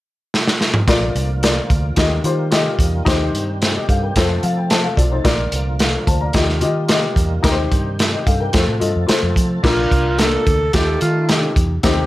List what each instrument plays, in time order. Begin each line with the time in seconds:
0.34 snare
0.47 snare
0.61 snare
0.74 mid tom
0.87 fingered electric bass A#1, upright piano A#2 F4 A#4 D5, tonewheel organ D3 F3 A#3 F4, kick, snare, closed hi-hat
1.15 fingered electric bass C2, closed hi-hat
1.43 upright piano F4 A#4 D5, snare, closed hi-hat
1.70 fingered electric bass D2, kick, closed hi-hat
1.96 fingered electric bass D#2, upright piano D#3 F4 G4 D#5, tonewheel organ D#3 G3, kick, snare, closed hi-hat
2.24 fingered electric bass D#3, upright piano F4 G4 C5, closed hi-hat
2.51 upright piano F4 G4 D#5, snare, closed hi-hat
2.79 fingered electric bass E2, kick, closed hi-hat
3.05 fingered electric bass D#2, upright piano D#3 D#4 G4 C5, tonewheel organ C4 G4, kick, snare, closed hi-hat
3.33 fingered electric bass G2, closed hi-hat
3.61 upright piano D#4 C5, snare, closed hi-hat
3.75 upright piano G4 D#5
3.89 fingered electric bass G2, upright piano A4 F5, kick, closed hi-hat
4.03 upright piano A#4 G5
4.16 fingered electric bass F2, tonewheel organ F3 A3 A4, upright piano F4 A4 C5, kick, snare, closed hi-hat
4.43 fingered electric bass F3, upright piano A4 F5, closed hi-hat
4.57 upright piano G5
4.70 upright piano C5 A5, snare, closed hi-hat
4.84 upright piano A4 F5
4.97 fingered electric bass B1, upright piano F4 D5, kick, closed hi-hat
5.12 upright piano D#4 C5
5.24 fingered electric bass A#1, upright piano A#2 F4 A#4 D5, tonewheel organ D3 A#3 F4, kick, snare, closed hi-hat
5.52 fingered electric bass C2, closed hi-hat
5.79 upright piano A4 F5, snare, closed hi-hat
6.07 fingered electric bass D2, upright piano C5 A5, kick, closed hi-hat
6.21 upright piano D5 A#5
6.33 fingered electric bass D#2, upright piano D#3 F4 G4 D#5, tonewheel organ D#3 G3 A#3, kick, snare, closed hi-hat
6.49 snare
6.61 fingered electric bass D#3, upright piano F4 G4 D#5, closed hi-hat
6.88 upright piano F4 G4 D#5, snare, closed hi-hat
7.16 fingered electric bass E2, kick, closed hi-hat
7.43 fingered electric bass D#2, upright piano D#3 D#4 G4 A#4, tonewheel organ G3 C4 G4, kick, snare, closed hi-hat
7.51 upright piano C5
7.71 fingered electric bass G2, kick, closed hi-hat
7.99 snare, closed hi-hat
8.13 upright piano G4 D#5
8.26 fingered electric bass G2, upright piano A4 F5, kick, closed hi-hat
8.40 upright piano A#4 G5
8.53 fingered electric bass F2, tonewheel organ F3 A3 A4, upright piano F4 A4 C5, kick, snare, closed hi-hat
8.67 fingered electric bass A2
8.80 fingered electric bass G2, upright piano F4 A4 D#5, closed hi-hat
8.96 fingered electric bass F2
9.07 upright piano F4 A4 C5, muted fingered electric bass stroke, snare, closed hi-hat
9.23 fingered electric bass F2
9.36 fingered electric bass F3, kick, closed hi-hat
9.63 fingered electric bass A#1, upright piano A#2 D4 F4 A#4, horn section A#3 D4 F4 A#4, alto saxophone F4, kick, snare, crash
9.91 fingered electric bass C2, kick, closed hi-hat
10.18 upright piano A#3 D4 F4, alto saxophone A4, snare, closed hi-hat
10.47 fingered electric bass D2, kick, closed hi-hat
10.73 fingered electric bass D#2, upright piano D#3 D#4 F4 G4, horn section A3 D#4 F4 A4, alto saxophone G4, kick, snare, closed hi-hat
11.01 fingered electric bass D#3, alto saxophone F4, closed hi-hat
11.29 upright piano D#4 F4 G4, snare, closed hi-hat
11.56 fingered electric bass E2, kick, closed hi-hat
11.83 fingered electric bass D#2, upright piano D#3 C4 D#4 G4, horn section G3 C4 D#4 G4, kick, snare, closed hi-hat